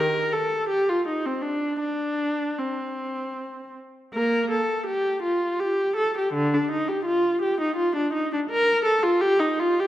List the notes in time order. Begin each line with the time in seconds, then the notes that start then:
0.00 A#4
0.33 A4
0.69 G4
0.89 F4
1.08 D#4
1.26 C4
1.42 D4
1.80 D4
2.59 C4
4.15 A#3 A#4
4.51 A4
4.87 G4
5.23 F4
5.60 G4
5.97 A4
6.18 G4
6.34 D3
6.54 D4
6.72 D#4
6.89 G4
7.05 F4
7.42 G4
7.61 D#4
7.76 F4
7.96 D4
8.13 D#4
8.33 D4
8.50 A#4
8.85 A4
9.03 F4
9.21 G4
9.40 D#4
9.60 F4
9.80 G4